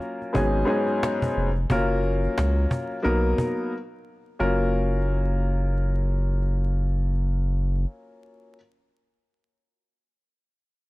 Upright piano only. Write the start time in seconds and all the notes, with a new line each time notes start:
Already playing: F#3 A#3 C#4 F4 A#4
0.33 G#2 F#3 B3 C#4 D#4 G#4
0.65 G#2 F#3 B3 C#4 D#4 G#4
1.70 F#3 A#3 C#4 F4 A#4
3.02 F#3 A#3 B3 D#4 A#4
4.39 F#3 A#3 C#4 F4 A#4